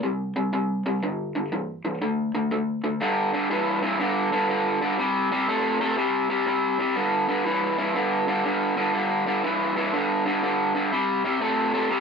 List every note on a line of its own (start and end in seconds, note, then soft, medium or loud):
0.03 0.33 C3 medium
0.03 0.33 G3 medium
0.36 0.51 C3 medium
0.36 0.51 G3 medium
0.53 0.82 C3 medium
0.53 0.83 G3 medium
0.86 1.01 C3 medium
0.86 1.01 G3 medium
1.03 1.32 G2 medium
1.03 1.32 D3 medium
1.35 1.50 G2 medium
1.35 1.51 D3 medium
1.52 1.81 G2 medium
1.52 1.81 E3 medium
1.85 2.00 G2 medium
1.85 2.00 E3 medium
2.02 2.31 D3 medium
2.02 2.31 A3 medium
2.35 2.50 D3 medium
2.35 2.50 A3 medium
2.51 2.80 D3 medium
2.51 2.81 A3 medium
2.84 2.99 D3 medium
2.84 2.99 A3 medium
3.01 3.30 G2 medium
3.01 3.30 D3 medium
3.33 3.49 G2 medium
3.33 3.49 D3 medium
3.50 3.79 G2 medium
3.50 3.80 E3 medium
3.82 3.98 G2 medium
3.82 3.98 E3 medium
4.00 4.29 G2 medium
4.00 4.29 D3 medium
4.32 4.47 G2 medium
4.32 4.48 D3 medium
4.49 4.78 G2 medium
4.49 4.78 D3 medium
4.81 4.97 G2 medium
4.81 4.97 D3 medium
4.99 5.28 C3 medium
4.99 5.28 G3 medium
5.32 5.47 C3 medium
5.32 5.47 G3 medium
5.49 5.78 C3 medium
5.49 5.78 A3 medium
5.81 5.96 C3 medium
5.81 5.96 A3 medium
5.97 6.27 C3 medium
5.97 6.27 G3 medium
6.30 6.45 C3 medium
6.30 6.45 G3 medium
6.47 6.76 C3 medium
6.47 6.76 G3 medium
6.79 6.94 C3 medium
6.79 6.95 G3 medium
6.96 7.25 G2 medium
6.96 7.26 D3 medium
7.28 7.44 G2 medium
7.28 7.44 D3 medium
7.45 7.75 G2 medium
7.45 7.75 E3 medium
7.78 7.93 G2 medium
7.78 7.94 E3 medium
7.95 8.25 G2 medium
7.95 8.25 D3 medium
8.27 8.43 G2 medium
8.27 8.43 D3 medium
8.45 8.74 G2 medium
8.45 8.74 D3 medium
8.77 8.92 G2 medium
8.77 8.93 D3 medium
8.94 9.23 G2 medium
8.94 9.24 D3 medium
9.26 9.42 G2 medium
9.26 9.42 D3 medium
9.43 9.73 G2 medium
9.43 9.73 E3 medium
9.76 9.91 G2 medium
9.76 9.92 E3 medium
9.93 10.22 G2 medium
9.93 10.23 D3 medium
10.25 10.41 G2 medium
10.25 10.41 D3 medium
10.43 10.72 G2 medium
10.43 10.72 D3 medium
10.75 10.90 G2 medium
10.75 10.90 D3 medium
10.92 11.21 C3 medium
10.92 11.21 G3 medium
11.24 11.40 C3 medium
11.24 11.40 G3 medium
11.41 11.70 C3 medium
11.41 11.71 A3 medium
11.74 11.89 C3 medium
11.74 11.89 A3 medium
11.91 12.00 C3 medium
11.91 12.00 G3 medium